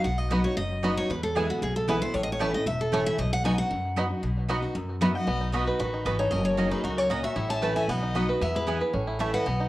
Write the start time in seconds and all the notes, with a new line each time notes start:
0.04 B1 B2 F#5
0.18 D#5
0.30 F#3 B3 D#4 F#4 B4 D#5 B5
0.44 D#4 F#4 C#5
0.57 F#1 F#2 D#5
0.83 F#3 B3 D#4 F#4 D#5 B5
0.97 C#5
1.09 E2 B4
1.23 A4
1.35 E3 G#3 B3 E4 G#4 B4 G#5
1.49 B3 E4 F#4
1.62 B1 B2 G#4
1.76 A4
1.87 E3 G#3 B3 E4 G#4 B4 G#5
2.01 B3 E4 C5
2.14 A1 A2 C#5
2.23 D#5
2.32 C#5
2.40 E3 A3 C#4 E4 A4 B4 C#5 A5
2.54 C#4 E4 D#5
2.66 E1 E2 E5
2.81 A4
2.92 E3 A3 C#4 E4 A4 C#5 A5
3.06 E5
3.18 B1 B2 D#5
3.33 F#5
3.44 F#3 B3 D#4 F#4 D#5 G#5 B5
3.58 D#4 F#4 F#5
3.70 F#2
3.96 F#3 B3 D#4 F#4 D#5 B5
4.10 D#4 F#4
4.23 B1 B2
4.49 F#3 B3 D#4 F#4 D#5 B5
4.62 D#4 F#4
4.75 F#2
5.01 F#3 B3 D#4 F#4 B4 D#5 E5 B5
5.14 D#4 F#4 D#5 F#5
5.27 B1 B2 B3
5.41 D#4
5.52 F#3 B3 D#4 F#4 B4 D#5 B5
5.67 D#4 F#4 B4
5.79 A1 D#3 F#4 B4
5.94 D#4
6.05 G#1 E3 B3 F#4 B4 D#5 B5
6.19 D#4 A4 C#5
6.31 F#1 F#3 C#4 A#4 D#5
6.45 A#4 C#5
6.58 F#3 A#3 C#4 D#4 F#4 D#5 A#5
6.72 D#4 G#4 B4
6.84 C#2 F#2 F#4 A#4
6.98 C#4 A#4 C#5
7.10 A#2 C#4 F#4 A#4 D#5 A#5
7.23 F#4 C#5 E5
7.36 A1 A2 E4
7.50 C#4 E5 A5
7.62 E3 A3 C#4 E4 B4 C#5 A5
7.76 E4 E5 G#5
7.88 B1 B2 B3 D#5 F#5
8.03 D#4
8.15 F#3 B3 D#4 F#4 D#5 B5
8.29 D#4 F#4 B4
8.41 E2 B3 B4 E5
8.55 E4 G#4 B4
8.67 E3 G#3 B3 E4 G#4 B4 G#5
8.81 B3 E4 B4
8.93 A1 A2 C#4
9.07 E4
9.19 E3 A3 C#4 E4 A4 C#5 E5 A5
9.34 B4 D#5 F#5
9.46 B1 B2 B3
9.60 D#4